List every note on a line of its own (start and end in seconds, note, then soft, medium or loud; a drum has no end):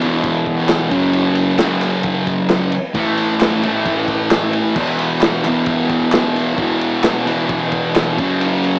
0.01 0.92 B2 medium
0.01 0.91 E3 medium
0.01 ride medium
0.06 0.90 E2 medium
0.24 kick loud
0.24 ride loud
0.46 kick medium
0.46 ride medium
0.68 snare loud
0.68 clap loud
0.68 ride loud
0.90 1.57 F#2 medium
0.90 1.59 C#3 loud
0.90 kick loud
0.90 ride medium
0.94 1.60 F#3 loud
1.13 ride loud
1.35 ride medium
1.58 2.71 F#2 medium
1.58 2.72 C#3 medium
1.58 snare loud
1.58 clap loud
1.58 ride loud
1.62 2.73 F#3 medium
1.81 clap medium
1.81 ride medium
2.03 kick loud
2.03 ride loud
2.27 kick medium
2.27 ride medium
2.48 snare loud
2.48 clap loud
2.48 ride loud
2.72 ride medium
2.94 3.61 A2 medium
2.94 3.66 E3 medium
2.94 kick loud
2.94 ride loud
2.99 3.62 A3 medium
3.18 ride medium
3.40 snare loud
3.40 clap loud
3.40 ride loud
3.63 4.79 E3 medium
3.63 4.75 A3 loud
3.63 ride medium
3.68 4.77 A2 medium
3.86 kick loud
3.86 ride loud
4.08 kick medium
4.08 ride medium
4.30 snare loud
4.30 clap loud
4.30 ride loud
4.53 ride medium
4.75 5.49 E2 medium
4.75 5.44 B2 medium
4.75 kick loud
4.75 crash loud
4.79 5.44 E3 loud
4.99 ride medium
5.21 snare loud
5.21 clap loud
5.21 ride loud
5.44 6.58 B2 medium
5.44 6.57 E3 medium
5.44 clap medium
5.44 ride medium
5.49 6.56 E2 medium
5.66 kick loud
5.66 ride loud
5.89 kick medium
5.89 ride medium
6.12 snare loud
6.12 clap loud
6.12 ride loud
6.36 ride medium
6.57 7.25 E2 medium
6.57 7.26 B2 loud
6.57 kick loud
6.57 ride loud
6.62 7.25 E3 loud
6.81 ride medium
7.03 snare loud
7.03 clap loud
7.03 ride loud
7.26 8.18 E2 medium
7.26 8.17 B2 medium
7.26 8.17 E3 medium
7.26 ride medium
7.49 kick loud
7.49 ride loud
7.72 kick medium
7.72 ride medium
7.95 snare loud
7.95 clap loud
7.95 ride loud
8.18 8.79 F#2 medium
8.18 8.79 C#3 loud
8.18 kick loud
8.18 ride medium
8.22 8.79 F#3 loud
8.41 ride loud
8.64 ride medium